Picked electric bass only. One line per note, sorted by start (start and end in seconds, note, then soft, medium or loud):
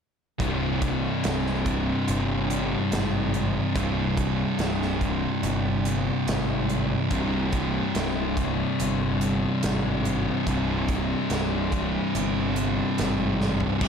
0.40 1.06 C1 medium
1.25 1.90 C1 medium
2.08 2.74 G1 medium
2.92 3.58 G#1 medium
3.76 4.42 C1 medium
4.59 5.25 C1 loud
5.43 6.09 G1 loud
6.27 6.93 G#1 medium
7.11 7.77 C1 medium
7.95 8.61 C1 medium
8.80 9.45 G1 medium
9.63 10.29 G#1 medium
10.47 11.12 C1 medium
11.30 11.96 C1 loud
12.15 12.80 G1 loud
12.99 13.64 G#1 medium
13.81 13.88 C1 medium